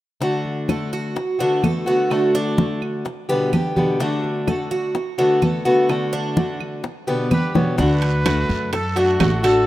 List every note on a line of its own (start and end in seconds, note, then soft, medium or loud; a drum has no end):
0.20 0.67 D3 medium
0.20 0.68 A3 medium
0.20 0.68 D4 medium
0.20 0.69 F#4 medium
0.20 high bongo medium
0.20 high conga soft
0.45 high conga soft
0.68 1.15 D3 soft
0.68 1.15 A3 soft
0.68 1.16 D4 medium
0.68 1.16 F#4 medium
0.68 0.92 A4 medium
0.68 high bongo soft
0.68 high conga medium
0.68 claves medium
0.93 1.39 F#4 medium
0.93 high bongo soft
0.93 high conga soft
1.16 muted steel-string acoustic guitar stroke medium
1.16 high bongo medium
1.16 high conga soft
1.39 1.62 D3 soft
1.39 1.63 A3 medium
1.39 1.62 B3 medium
1.39 1.63 D4 medium
1.39 1.62 F#4 medium
1.39 high bongo soft
1.39 high conga soft
1.63 1.86 D3 soft
1.63 1.86 A3 soft
1.63 1.86 B3 soft
1.63 1.85 F#4 soft
1.63 1.87 A4 medium
1.63 high bongo soft
1.63 low bongo medium
1.63 high conga medium
1.63 claves medium
1.86 2.09 D3 soft
1.86 2.10 A3 medium
1.86 2.10 B3 medium
1.86 2.09 F#4 medium
1.86 2.33 F#4 medium
1.86 high bongo soft
1.86 high conga soft
2.10 2.56 D3 medium
2.10 2.57 A3 medium
2.10 2.57 D4 medium
2.10 2.58 F#4 medium
2.10 high bongo medium
2.10 high conga soft
2.10 claves medium
2.34 2.81 D4 medium
2.34 high conga soft
2.57 3.04 D3 soft
2.57 3.05 A3 soft
2.57 3.05 D4 medium
2.57 3.05 F#4 soft
2.57 high bongo medium
2.57 high conga loud
2.82 high bongo soft
2.82 high conga soft
2.82 claves medium
3.05 muted steel-string acoustic guitar stroke medium
3.05 high bongo medium
3.05 high conga soft
3.29 3.53 B2 medium
3.29 3.51 D3 medium
3.29 3.52 G3 medium
3.29 3.52 B3 medium
3.29 3.52 G4 medium
3.29 3.52 B4 medium
3.29 high bongo soft
3.29 high conga soft
3.52 3.75 D3 soft
3.52 3.76 B3 medium
3.52 3.99 G4 medium
3.52 3.75 G4 soft
3.52 high bongo soft
3.52 low bongo medium
3.52 high conga medium
3.52 claves medium
3.76 4.00 B2 soft
3.76 3.99 D3 medium
3.76 4.00 G3 medium
3.76 3.99 B3 medium
3.76 3.99 G4 medium
3.76 high bongo soft
3.76 high conga medium
4.00 4.46 D3 medium
4.00 4.47 A3 medium
4.00 4.46 D4 medium
4.00 4.47 D4 medium
4.00 4.47 F#4 medium
4.00 high bongo medium
4.00 high conga soft
4.24 high conga soft
4.47 4.94 D3 soft
4.47 4.94 A3 soft
4.47 4.95 D4 soft
4.47 4.95 F#4 soft
4.47 4.71 A4 medium
4.47 high bongo medium
4.47 high conga medium
4.47 claves medium
4.71 5.17 F#4 medium
4.71 high bongo soft
4.71 high conga soft
4.95 muted steel-string acoustic guitar stroke medium
4.95 high bongo medium
4.95 high conga soft
5.18 5.40 D3 medium
5.18 5.41 A3 medium
5.18 5.41 B3 medium
5.18 5.41 D4 medium
5.18 5.41 F#4 medium
5.18 high bongo soft
5.18 high conga soft
5.42 5.65 D3 soft
5.42 5.65 A3 soft
5.42 5.65 B3 soft
5.42 5.64 F#4 medium
5.42 5.65 A4 medium
5.42 high bongo soft
5.42 low bongo medium
5.42 high conga medium
5.42 claves medium
5.65 5.88 D3 medium
5.65 5.88 A3 medium
5.65 5.89 B3 medium
5.65 5.88 F#4 medium
5.65 6.11 F#4 medium
5.65 high bongo soft
5.65 high conga soft
5.89 6.35 D3 medium
5.89 6.36 A3 medium
5.89 6.36 D4 medium
5.89 6.37 F#4 medium
5.89 high bongo medium
5.89 high conga soft
5.89 claves medium
6.13 6.59 D4 medium
6.13 high conga soft
6.36 6.82 D3 soft
6.36 6.83 A3 soft
6.36 6.84 D4 soft
6.36 6.84 F#4 soft
6.36 high bongo medium
6.36 high conga loud
6.60 high bongo soft
6.60 high conga soft
6.60 claves medium
6.83 muted steel-string acoustic guitar stroke medium
6.83 high bongo medium
6.83 high conga soft
7.07 7.31 B2 soft
7.07 7.29 D3 medium
7.07 7.30 G3 medium
7.07 7.31 B3 medium
7.07 7.30 G4 medium
7.07 7.31 B4 medium
7.07 high bongo soft
7.07 high conga soft
7.31 7.54 D3 soft
7.31 7.54 G3 soft
7.31 7.54 B3 soft
7.31 7.77 G4 medium
7.31 7.53 G4 soft
7.31 7.57 B4 loud
7.31 high bongo soft
7.31 low bongo medium
7.31 high conga medium
7.31 claves medium
7.54 7.78 B2 medium
7.54 7.76 D3 soft
7.54 7.78 G3 medium
7.54 7.78 B3 medium
7.54 7.77 G4 medium
7.54 7.78 C#5 medium
7.54 high bongo medium
7.54 high conga medium
7.78 8.46 D2 medium
7.78 8.24 D3 medium
7.78 8.25 A3 medium
7.78 8.24 D4 medium
7.78 8.25 D4 medium
7.78 8.26 F#4 medium
7.78 8.69 B4 loud
7.78 high bongo medium
7.78 high conga soft
7.78 long guiro medium
8.02 high conga soft
8.02 high timbale medium
8.25 8.71 D3 soft
8.25 8.72 A3 soft
8.25 8.72 D4 medium
8.25 8.72 F#4 medium
8.25 high bongo soft
8.25 high conga medium
8.25 high timbale medium
8.25 low timbale medium
8.25 short guiro medium
8.25 claves medium
8.49 9.16 F#2 medium
8.49 high bongo soft
8.49 high conga soft
8.49 short guiro medium
8.73 8.96 A4 medium
8.73 9.00 A4 medium
8.73 muted steel-string acoustic guitar stroke medium
8.73 high bongo medium
8.73 high conga soft
8.73 high timbale medium
8.73 long guiro medium
8.96 9.19 A3 medium
8.96 9.43 D4 medium
8.96 9.20 D4 medium
8.96 9.19 F#4 medium
8.96 9.45 F#4 loud
8.96 high bongo soft
8.96 high conga soft
8.96 high timbale medium
9.19 9.67 A1 medium
9.19 9.43 D3 soft
9.19 9.43 A3 medium
9.19 9.43 D4 soft
9.19 9.42 F#4 medium
9.19 high bongo soft
9.19 low bongo medium
9.19 high conga medium
9.19 high timbale medium
9.19 low timbale medium
9.19 short guiro medium
9.19 claves medium
9.43 9.67 A3 medium
9.43 9.67 D4 medium
9.43 9.66 F#4 medium
9.43 9.67 A4 medium
9.43 9.67 A4 loud
9.43 high bongo soft
9.43 high conga soft
9.43 high timbale medium
9.43 short guiro medium